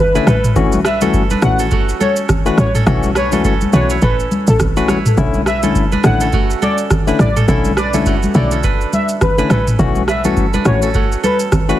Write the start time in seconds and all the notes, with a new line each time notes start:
Already playing: A3 D4 F#4 A4 B4
0.00 B4
0.15 D3 A3 C#4 D4 E4 B4, shaker
0.27 A1 C#4 A4 B4, cross-stick, high conga, shaker
0.44 mid tom, shaker
0.56 B1 E3 A3 C#4 F#4, kick, low conga, shaker
0.72 high conga, shaker
0.85 D4 B4 E5, cross-stick, shaker
1.01 E3 A3 C#4 F#4 A4, high conga, shaker
1.14 kick, shaker
1.30 D4 B4, high conga, shaker
1.42 A1 E3 A3 C#4 F#4 F#5, cross-stick, low conga, shaker
1.59 C#4 A4, shaker
1.71 A3 F#4, kick, shaker
1.89 shaker
2.00 C#4 A4 C#5, high conga, shaker
2.16 shaker
2.29 kick, cross-stick, low conga, shaker
2.45 E3 A3 C#4 D4 F#4 B4, shaker
2.58 A1 C#5, cross-stick, high conga, shaker
2.75 C#4 A4, mid tom, shaker
2.86 B1 E3 A3 C#4 F#4 A4, kick, cross-stick, low conga, shaker
3.03 high conga, shaker
3.15 D4 B4 C#5, cross-stick, shaker
3.32 E3 A3 C#4 F#4 A4, high conga, shaker
3.44 C#4 A4, kick, shaker
3.61 high conga, shaker
3.73 B1 E3 A3 C#4 D4 F#4 B4 C#5, low conga, shaker
3.90 E4 C#5, shaker
4.02 A1 C#4 A4 B4, kick, shaker
4.20 shaker
4.31 high conga, shaker
4.47 A1 A4, shaker
4.60 B1, kick, cross-stick, low conga, shaker
4.76 E3 A3 C#4 D4 F#4 B4, shaker
4.88 A1 E4 C#5, cross-stick, high conga, shaker
5.06 mid tom, shaker
5.17 B1 D3 A3 C#4 E4, kick, low conga, shaker
5.34 high conga, shaker
5.46 D4 B4 E5, cross-stick, shaker
5.63 D3 A3 C#4 E4 A4, high conga, shaker
5.75 kick, shaker
5.92 D4 B4, high conga, shaker
6.04 A1 D3 A3 C#4 E4 F#5, cross-stick, low conga, shaker
6.21 C#4 A4, shaker
6.32 A3 F#4, kick, shaker
6.50 shaker
6.62 C#4 A4 D5, high conga, shaker
6.78 shaker
6.90 kick, cross-stick, low conga, shaker
7.07 D3 A3 C#4 D4 E4 B4, shaker
7.19 A1 D5, cross-stick, high conga, shaker
7.36 C#4 A4, mid tom, shaker
7.48 B1 D3 A3 C#4 E4 A4, kick, low conga, shaker
7.65 high conga, shaker
7.77 D4 B4 D5, cross-stick, shaker
7.94 D3 A3 C#4 E4 A4, high conga, shaker
8.06 A3 F#4, kick, shaker
8.23 high conga, shaker
8.34 B1 D3 A3 C#4 E4 F#4 D5, low conga, shaker
8.51 C#4 A4, shaker
8.63 D4 B4, kick, shaker
8.81 shaker
8.93 E5, high conga, shaker
9.09 shaker
9.21 B4, kick, cross-stick, low conga, shaker
9.38 D3 A3 C#4 D4 E4 B4, shaker
9.50 A1 C#4 A4 B4, cross-stick, high conga, shaker
9.67 mid tom, shaker
9.79 B1 E3 A3 C#4 F#4, kick, low conga, shaker
9.95 high conga, shaker
10.08 D4 B4 E5, cross-stick, shaker
10.24 E3 A3 C#4 F#4 A4, high conga, shaker
10.37 kick, shaker
10.53 D4 B4, high conga, shaker
10.65 A1 E3 A3 C#4 F#4 C#5, cross-stick, low conga, shaker
10.82 C#4 A4, shaker
10.94 A3 F#4, kick, shaker
11.12 shaker
11.23 C#4 A4 B4, high conga, shaker
11.40 shaker
11.52 kick, cross-stick, low conga, shaker
11.69 E3 A3 C#4 D4 F#4 B4, shaker